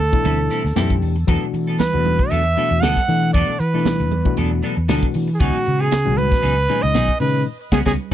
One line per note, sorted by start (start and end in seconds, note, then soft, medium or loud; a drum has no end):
0.00 1.03 A4 medium
0.13 0.60 B2 medium
0.13 0.60 E3 medium
0.13 0.60 A3 medium
0.13 0.60 D4 medium
0.13 0.60 E4 medium
0.13 muted clean electric guitar stroke soft
0.13 kick medium
0.25 0.47 D2 medium
0.25 0.39 G3 medium
0.25 0.38 C4 medium
0.25 0.38 E4 medium
0.25 0.38 A4 medium
0.25 closed hi-hat medium
0.25 muted conga soft
0.25 high conga medium
0.39 muted clean electric guitar stroke soft
0.50 0.64 G3 medium
0.50 0.64 C4 medium
0.50 0.63 E4 medium
0.50 0.63 A4 medium
0.50 snare soft
0.50 closed hi-hat medium
0.50 muted conga soft
0.64 0.75 D2 medium
0.64 muted clean electric guitar stroke soft
0.64 snare soft
0.76 1.00 F#2 medium
0.76 1.15 B2 medium
0.76 1.15 E3 medium
0.76 0.93 G3 medium
0.76 1.15 A3 medium
0.76 0.93 C4 medium
0.76 1.15 D4 medium
0.76 0.93 E4 medium
0.76 1.15 G4 medium
0.76 0.93 A4 medium
0.76 snare loud
0.76 closed hi-hat medium
0.76 high conga medium
0.90 kick medium
1.02 1.26 E2 medium
1.02 muted clean electric guitar stroke soft
1.02 open hi-hat medium
1.16 muted clean electric guitar stroke soft
1.27 1.40 E2 medium
1.27 1.75 B2 medium
1.27 1.75 E3 medium
1.27 1.44 F#3 medium
1.27 1.75 A3 medium
1.27 1.44 B3 medium
1.27 1.76 D4 medium
1.27 1.44 D4 medium
1.27 1.76 F#4 medium
1.27 1.45 A4 medium
1.27 kick loud
1.27 closed hi-hat medium
1.27 muted conga soft
1.42 muted fingered electric bass stroke soft
1.53 1.95 E3 medium
1.53 muted clean electric guitar stroke soft
1.53 closed hi-hat medium
1.67 1.79 B3 soft
1.67 1.79 D4 soft
1.67 1.79 A4 soft
1.79 2.31 B4 medium
1.79 muted clean electric guitar stroke soft
1.79 snare loud
1.79 closed hi-hat medium
1.79 high conga medium
1.93 2.16 E2 medium
1.93 2.40 B2 medium
1.93 2.41 E3 medium
1.93 2.40 A3 medium
1.93 2.41 D4 medium
1.93 2.41 F#4 medium
1.93 muted clean electric guitar stroke soft
2.05 closed hi-hat medium
2.05 muted conga soft
2.05 high conga medium
2.19 muted clean electric guitar stroke soft
2.19 kick medium
2.30 2.54 E2 medium
2.30 2.45 F#3 medium
2.30 2.44 B3 medium
2.30 2.44 D4 medium
2.30 2.43 A4 medium
2.30 2.82 E5 medium
2.30 closed hi-hat medium
2.30 muted conga soft
2.45 muted clean electric guitar stroke soft
2.57 2.96 B2 medium
2.57 2.96 E3 medium
2.57 2.71 F#3 medium
2.57 2.96 A3 medium
2.57 2.70 B3 medium
2.57 2.96 D4 medium
2.57 2.70 D4 medium
2.57 2.96 F#4 medium
2.57 2.69 A4 medium
2.57 closed hi-hat medium
2.57 muted conga soft
2.71 2.81 E2 medium
2.71 muted clean electric guitar stroke soft
2.81 2.95 D2 medium
2.81 2.99 F#3 medium
2.81 2.99 B3 medium
2.81 2.99 D4 medium
2.81 2.99 A4 medium
2.81 3.33 F#5 medium
2.81 snare loud
2.81 closed hi-hat medium
2.81 high conga medium
2.96 muted fingered electric bass stroke soft
2.96 kick medium
2.96 snare soft
3.08 3.56 B2 medium
3.08 3.56 E3 medium
3.08 3.31 E3 medium
3.08 3.56 A3 medium
3.08 3.56 D4 medium
3.08 3.57 A4 medium
3.08 muted clean electric guitar stroke soft
3.08 open hi-hat medium
3.23 muted clean electric guitar stroke soft
3.33 3.46 E2 medium
3.33 3.51 F#3 medium
3.33 3.51 B3 medium
3.33 3.51 D4 medium
3.33 3.51 A4 medium
3.33 3.61 D5 medium
3.33 kick loud
3.33 closed hi-hat medium
3.33 muted conga soft
3.48 muted fingered electric bass stroke soft
3.60 4.01 E3 medium
3.60 4.37 B4 medium
3.60 muted clean electric guitar stroke soft
3.60 closed hi-hat medium
3.74 4.11 B2 medium
3.74 4.11 E3 medium
3.74 4.11 A3 medium
3.74 3.86 B3 soft
3.74 4.11 D4 medium
3.74 3.86 D4 soft
3.74 4.11 E4 medium
3.74 3.86 A4 soft
3.85 muted clean electric guitar stroke soft
3.85 snare loud
3.85 closed hi-hat medium
3.85 high conga medium
4.00 4.22 E2 medium
4.00 muted clean electric guitar stroke soft
4.11 closed hi-hat medium
4.11 muted conga soft
4.11 high conga medium
4.25 4.72 B2 medium
4.25 4.72 E3 medium
4.25 4.72 A3 medium
4.25 4.73 D4 medium
4.25 4.73 F#4 medium
4.25 muted clean electric guitar stroke soft
4.25 kick medium
4.37 4.60 E2 medium
4.37 4.51 F#3 medium
4.37 4.51 B3 medium
4.37 4.51 D4 medium
4.37 4.50 A4 medium
4.37 closed hi-hat medium
4.37 muted conga soft
4.37 high conga medium
4.51 muted clean electric guitar stroke soft
4.63 4.77 F#3 medium
4.63 4.76 B3 medium
4.63 4.76 D4 medium
4.63 4.75 A4 medium
4.63 closed hi-hat medium
4.63 muted conga soft
4.77 4.88 E2 medium
4.77 muted clean electric guitar stroke soft
4.88 5.01 D2 loud
4.88 5.28 B2 medium
4.88 5.28 E3 medium
4.88 5.05 F#3 medium
4.88 5.28 A3 medium
4.88 5.05 B3 medium
4.88 5.05 D4 medium
4.88 5.28 D4 medium
4.88 5.28 F#4 medium
4.88 5.05 A4 medium
4.88 snare loud
4.88 closed hi-hat medium
4.88 high conga medium
5.03 muted fingered electric bass stroke soft
5.03 kick medium
5.14 5.38 E3 medium
5.14 muted clean electric guitar stroke soft
5.14 open hi-hat medium
5.28 muted clean electric guitar stroke soft
5.34 5.42 G#4 medium
5.39 5.53 C#2 medium
5.39 5.88 A#2 medium
5.39 5.88 D#3 medium
5.39 5.56 F#3 medium
5.39 5.88 G#3 medium
5.39 5.56 B3 medium
5.39 5.88 C#4 medium
5.39 5.57 D#4 medium
5.39 5.82 F#4 medium
5.39 5.89 F#4 medium
5.39 5.57 G#4 medium
5.39 kick loud
5.39 closed hi-hat medium
5.39 muted conga soft
5.55 muted fingered electric bass stroke soft
5.66 6.09 C#3 medium
5.66 muted clean electric guitar stroke soft
5.66 closed hi-hat medium
5.79 5.90 B3 soft
5.79 5.90 D#4 soft
5.79 5.90 G#4 medium
5.79 6.19 G#4 medium
5.91 muted clean electric guitar stroke soft
5.91 snare loud
5.91 closed hi-hat medium
5.91 high conga medium
6.05 6.29 C#2 medium
6.05 6.53 A#2 medium
6.05 6.53 D#3 medium
6.05 6.53 G#3 medium
6.05 6.53 C#4 medium
6.05 6.53 F#4 medium
6.05 muted clean electric guitar stroke soft
6.17 6.84 B4 loud
6.17 closed hi-hat medium
6.17 muted conga soft
6.17 high conga medium
6.30 muted clean electric guitar stroke soft
6.30 kick medium
6.30 snare soft
6.42 6.66 C#2 medium
6.42 6.56 F#3 medium
6.42 6.56 B3 medium
6.42 6.55 D#4 medium
6.42 6.55 G#4 medium
6.42 closed hi-hat medium
6.56 muted clean electric guitar stroke soft
6.68 7.08 A#2 medium
6.68 7.08 D#3 medium
6.68 6.83 F#3 medium
6.68 7.08 G#3 medium
6.68 6.82 B3 medium
6.68 7.08 C#4 medium
6.68 6.82 D#4 medium
6.68 7.08 D#4 medium
6.68 6.81 G#4 medium
6.68 closed hi-hat medium
6.68 muted conga soft
6.82 6.94 C#2 medium
6.82 7.20 D#5 loud
6.82 muted clean electric guitar stroke soft
6.94 7.07 B1 medium
6.94 7.11 F#3 medium
6.94 7.11 B3 medium
6.94 7.11 D#4 medium
6.94 7.11 G#4 medium
6.94 snare loud
6.94 closed hi-hat medium
6.94 high conga medium
7.08 muted fingered electric bass stroke soft
7.08 kick medium
7.20 7.47 A#2 medium
7.20 7.43 C#3 medium
7.20 7.47 D#3 medium
7.20 7.47 G#3 medium
7.20 7.47 C#4 medium
7.20 7.47 D#4 medium
7.20 7.45 B4 medium
7.20 muted clean electric guitar stroke soft
7.20 open hi-hat medium
7.34 muted clean electric guitar stroke soft
7.72 7.82 C#2 medium
7.72 7.81 G#3 medium
7.72 7.81 B3 medium
7.72 7.81 C#4 loud
7.72 7.81 C#4 medium
7.72 7.81 F#4 medium
7.72 7.79 G#4 medium
7.72 kick medium
7.72 snare medium
7.72 high conga medium
7.86 7.95 C#2 medium
7.86 7.94 G#3 medium
7.86 7.94 B3 medium
7.86 7.94 C#4 medium
7.86 7.94 F#4 medium
7.86 7.92 G#4 medium
7.86 kick medium
7.86 snare medium
7.86 high conga medium